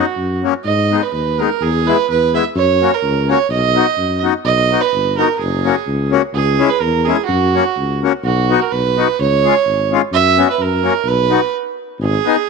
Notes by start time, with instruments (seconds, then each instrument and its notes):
Already playing: fiddle F#4
0.16 tuba F#2
0.43 accordion F#3 A#3 C#4
0.65 tuba G#2, fiddle D#5
0.91 accordion G#3 B3 D#4
1.03 fiddle B4
1.13 tuba D#2, fiddle B4
1.39 accordion G#3 B3 D#4, fiddle A#4
1.61 tuba E2, fiddle G#4
1.87 accordion G#3 B3 E4, fiddle B4
2.10 tuba E2, fiddle B4
2.33 accordion G#3 B3 E4, fiddle E5
2.56 tuba F#2, fiddle C#5
2.81 accordion A#3 C#4 F#4
2.94 fiddle A#4
3.03 tuba C#2
3.28 accordion A#3 C#4 F#4, fiddle C#5
3.49 tuba B1, fiddle D#5
3.75 accordion B3 D#4 F#4
3.97 tuba F#2
4.23 accordion B3 D#4 F#4
4.45 tuba B1, fiddle D#5
4.71 accordion B3 D#4 F#4
4.81 fiddle B4
4.92 tuba G1
5.17 accordion B3 D#4 F#4, fiddle A#4
5.38 tuba F#1, fiddle G#4
5.64 accordion A#3 C#4 F#4
5.87 tuba C#2
6.11 accordion A#3 C#4 F#4
6.34 tuba C#2, fiddle G#4
6.58 accordion G#3 C#4 E4
6.69 fiddle B4
6.80 tuba E2, fiddle A#4
7.05 accordion G#3 C#4 E4, fiddle G#4
7.26 tuba F#2, fiddle F#4
7.54 accordion A#3 C#4 F#4
7.76 tuba C#2
8.02 accordion A#3 C#4 F#4
8.24 tuba B1, fiddle F#4
8.49 accordion B3 D#4 F#4
8.62 fiddle A#4
8.71 tuba B1, fiddle B4
8.97 accordion B3 D#4 F#4
9.19 tuba C#2, fiddle C#5
9.44 accordion G#3 C#4 F4
9.66 tuba G#1
9.92 accordion G#3 C#4 F4
10.12 tuba F#2, fiddle E5
10.37 accordion B3 C#4 F#4
10.50 fiddle B4
10.59 tuba F#2, fiddle A#4
10.83 accordion A#3 C#4 F#4
11.05 tuba B1, fiddle B4
11.29 accordion B3 D#4 F#4
11.99 tuba G#1, fiddle G#4
12.25 accordion B3 D#4 G#4